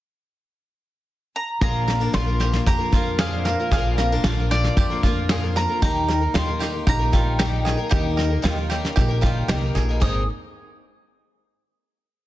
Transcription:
1.36 mandolin A#5
1.61 upright bass A#1, twelve-string acoustic guitar A#2 D3 F3 A#3 F4 A#4, steel-string acoustic guitar D4, five-string banjo G#4, mandolin A#5, kick, snare
1.88 steel-string acoustic guitar C4, five-string banjo A#4, snare
2.00 twelve-string acoustic guitar F3 A#3 F4 A#4, steel-string acoustic guitar D4
2.13 upright bass A#1, twelve-string acoustic guitar A#2 D3 F3 A#3 F4 A#4, five-string banjo F4, mandolin C6, snare
2.27 twelve-string acoustic guitar F3 A#3 F4 A#4
2.40 twelve-string acoustic guitar F3 A#3 F4 A#4, five-string banjo G4, snare
2.52 twelve-string acoustic guitar F3 A#3 F4 A#4, snare
2.66 upright bass F2, five-string banjo G4, mandolin A#5, kick, snare
2.78 twelve-string acoustic guitar F3 A#3 F4 A#4
2.92 twelve-string acoustic guitar F3 A#3 F4 A#4, five-string banjo F4, kick, snare
3.19 steel-string acoustic guitar F2, twelve-string acoustic guitar A#2 D3 F3 A#3 F4 A#4, five-string banjo G#4, mandolin F5, snare
3.45 steel-string acoustic guitar A#3, five-string banjo A#4, snare
3.60 twelve-string acoustic guitar F3 A#3 F4 A#4
3.71 upright bass A#1, twelve-string acoustic guitar A#2 D3 F3 A#3 F4 A#4, five-string banjo G#4, mandolin F5, kick, snare
3.97 steel-string acoustic guitar C4, five-string banjo A#4, snare
4.12 twelve-string acoustic guitar F3 A#3 F4 A#4, steel-string acoustic guitar D4
4.24 upright bass A#1, twelve-string acoustic guitar A#2 D3 F3 A#3 F4 A#4, five-string banjo F4, snare
4.38 twelve-string acoustic guitar F3 A#3 F4 A#4
4.51 twelve-string acoustic guitar F3 A#3 F4 A#4, five-string banjo G4, mandolin D5, snare
4.64 snare
4.77 upright bass F2, steel-string acoustic guitar D4, five-string banjo G4, kick, snare
4.90 twelve-string acoustic guitar F3 A#3 F4 A#4
5.03 twelve-string acoustic guitar F3 A#3 F4 A#4, five-string banjo F4, kick, snare
5.29 steel-string acoustic guitar F2, twelve-string acoustic guitar A#2 D3 F3 A#3 F4 A#4, five-string banjo G#4, snare
5.43 twelve-string acoustic guitar F3 A#3 F4 A#4
5.56 steel-string acoustic guitar A#3, five-string banjo A#4, mandolin A#5, snare
5.69 twelve-string acoustic guitar F3 A#3 F4 A#4
5.82 upright bass D#2, felt piano D#2 D#3 A#3 D#4 G4 D#5, twelve-string acoustic guitar D#3 G3 A#3 D#4 A#4, five-string banjo G4, mandolin A#5, kick, snare
6.08 five-string banjo A#4, snare
6.21 twelve-string acoustic guitar A#3 D#4 A#4
6.34 upright bass D#2, twelve-string acoustic guitar D#3 G3 A#3 D#4 A#4, felt piano A#3 D#4 G4 D#5, five-string banjo F4, mandolin C6, snare
6.47 twelve-string acoustic guitar A#3 D#4 A#4
6.59 twelve-string acoustic guitar G3 A#3 D#4 A#4, five-string banjo G4, snare
6.72 twelve-string acoustic guitar A#3 D#4 A#4
6.87 upright bass A#1, felt piano A#3 D#4 G4 F5, five-string banjo G4, mandolin A#5, kick, snare
6.99 twelve-string acoustic guitar A#3 D#4 A#4
7.12 twelve-string acoustic guitar G3 A#3 D#4 A#4, five-string banjo F4, kick, snare
7.39 twelve-string acoustic guitar D#3 G3 A#3 D#4 A#4, felt piano A#3 D#4 G4 D#5, five-string banjo G4, snare
7.65 five-string banjo G#4, snare
7.77 twelve-string acoustic guitar A#3 D#4 A#4
7.89 upright bass D#2, felt piano D#2 D#3 A#3 D#4 G4 D#5, twelve-string acoustic guitar D#3 G3 A#3 D#4 A#4, five-string banjo G4, kick, snare
8.17 five-string banjo A#4, snare
8.30 twelve-string acoustic guitar A#3 D#4 A#4
8.42 upright bass D#2, twelve-string acoustic guitar D#3 G3 A#3 D#4 A#4, felt piano A#3 D#4 G4 D#5, five-string banjo F4, snare
8.56 twelve-string acoustic guitar A#3 D#4 A#4
8.70 twelve-string acoustic guitar G3 A#3 D#4 A#4, five-string banjo G4, felt piano C#5, snare
8.85 snare
8.96 upright bass A#1, felt piano A#3 D#4 G4 D#5, five-string banjo G4, kick, snare
9.08 twelve-string acoustic guitar A#3 D#4 A#4
9.21 twelve-string acoustic guitar G3 A#3 D#4 A#4, five-string banjo F4, felt piano F5, kick, snare
9.48 upright bass C2, twelve-string acoustic guitar D#3 G3 A#3 D#4 A#4, felt piano A#3 D#4 G4 D#5 G5, five-string banjo G4, snare
9.63 twelve-string acoustic guitar A#3 D#4 A#4
9.75 upright bass A#1, five-string banjo G#4, felt piano G#5, snare
9.89 twelve-string acoustic guitar A#3 D#4 A#4
10.00 upright bass G#1, felt piano G#1 A#3 D#4 G#4 C5, twelve-string acoustic guitar G#3 C4 D#4 A#4, five-string banjo G#4, mandolin D#6, kick, crash

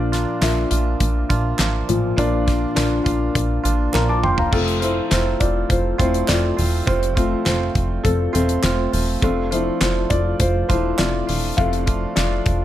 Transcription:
Already playing: analog synth bass A#1, clean electric guitar A#2 F3 A#3 D4 F4, felt piano A#2 F3 D4 F4 A#4 D5
0.12 clean electric guitar A#3 D4 F4, snare, closed hi-hat
0.41 analog synth bass A#1, clean electric guitar F3 A#3 D4 F4, felt piano D4 F4 A#4 E5, snare, clap, closed hi-hat
0.71 analog synth bass A#1, clean electric guitar A#3 D4 F4, closed hi-hat
1.00 analog synth bass A#1, kick, closed hi-hat
1.29 analog synth bass A#1, clean electric guitar A#3 D4 F4, kick, closed hi-hat
1.59 analog synth bass A1, clean electric guitar F3 A#3 D4 F4, snare, clap, closed hi-hat
1.89 analog synth bass A1, felt piano A#2 F3, closed hi-hat
2.17 analog synth bass A#1, clean electric guitar A#2 F3 A#3 D4 F4, felt piano D4 F4 A#4 D5, kick, closed hi-hat
2.46 clean electric guitar A#3 D4 F4, kick, snare, closed hi-hat
2.75 analog synth bass A#1, clean electric guitar F3 A#3 D4 F4, felt piano D4 F4 A#4 D5, snare, clap, closed hi-hat
3.04 analog synth bass A#1, clean electric guitar A#3 D4 F4, kick, closed hi-hat
3.35 analog synth bass A#1, kick, closed hi-hat
3.64 analog synth bass A1, clean electric guitar A#3 D4 F4, closed hi-hat
3.93 analog synth bass A#1, clean electric guitar F3 A#3 D4 F4, felt piano D4 A#4 F5 A#5, snare, clap
4.09 felt piano A5 D6
4.24 analog synth bass E1, felt piano G5 C6, mid tom
4.38 felt piano F5 A#5, floor tom
4.51 analog synth bass F1, clean electric guitar F2 C3 F3 A3 C4 F4, felt piano A3 C4 F4 A4, kick, crash
4.68 closed hi-hat
4.80 clean electric guitar F3 A3 C4 F4, felt piano E4 C5, closed hi-hat
5.10 analog synth bass F1, clean electric guitar F3 A3 C4 F4, felt piano F4 C5, snare, clap, closed hi-hat
5.40 analog synth bass F1, felt piano F4 D5, kick, closed hi-hat
5.69 analog synth bass F1, felt piano F4 C5, kick, closed hi-hat
5.98 analog synth bass E1, clean electric guitar F3 A3 C4 F4, felt piano A3 C4 E4 F4 C5, kick, closed hi-hat
6.14 closed hi-hat
6.27 analog synth bass F1, clean electric guitar F3 A3 C4, felt piano D5, snare, clap, closed hi-hat
6.30 felt piano F4, clean electric guitar F4, clap
6.57 analog synth bass E1, clean electric guitar F3 A3 C4 F4, open hi-hat
6.86 analog synth bass F1, clean electric guitar F2 C3 F3 A3 C4 F4, felt piano F4 C5, kick, closed hi-hat
7.03 closed hi-hat
7.15 clean electric guitar F3 A3 C4 F4, felt piano A3 C4 F4, kick, closed hi-hat
7.45 analog synth bass F1, clean electric guitar F3 A3 C4 F4, felt piano F4 C5, snare, clap, closed hi-hat
7.75 analog synth bass F1, kick, closed hi-hat
8.04 analog synth bass F1, felt piano C4 A4, kick, closed hi-hat
8.33 analog synth bass E1, clean electric guitar F3 A3 C4 F4, felt piano C4 A4, closed hi-hat
8.49 closed hi-hat
8.63 analog synth bass F1, clean electric guitar F3 A3 C4 F4, felt piano A3 C4 F4 C5, snare, clap, closed hi-hat
8.92 analog synth bass E1, clean electric guitar F3 A3 C4 F4, open hi-hat
9.21 analog synth bass F1, clean electric guitar F2 C3 F3 A3 D4 F4, felt piano C4 A4, kick, closed hi-hat
9.51 felt piano F3 C4 E4 C5 E5, clean electric guitar F3 A3 D4 F4, closed hi-hat
9.81 analog synth bass F1, clean electric guitar F3 A3 D4 F4, felt piano F4 C5, snare, clap, closed hi-hat
10.10 analog synth bass F1, felt piano F4 D5, kick, closed hi-hat
10.39 analog synth bass F1, felt piano F4 C5, kick, closed hi-hat
10.68 analog synth bass E1, clean electric guitar F3 A3 D4 F4, felt piano E4 C5, kick, closed hi-hat
10.98 analog synth bass F1, clean electric guitar F3 A3 D4 F4, felt piano F3 C4 E4 F4 D5, snare, clap, closed hi-hat
11.27 analog synth bass E1, clean electric guitar F3 A3 D4 F4, open hi-hat
11.57 analog synth bass F1, clean electric guitar F2 C3 F3 A3 D4 F4, felt piano F3 C4 A4 E5 F5, kick, closed hi-hat
11.73 closed hi-hat
11.86 clean electric guitar F3 A3 D4 F4, kick, closed hi-hat
12.16 analog synth bass F1, clean electric guitar F3 A3 D4 F4, felt piano F4 D5, snare, clap, closed hi-hat
12.46 analog synth bass F1, kick, closed hi-hat

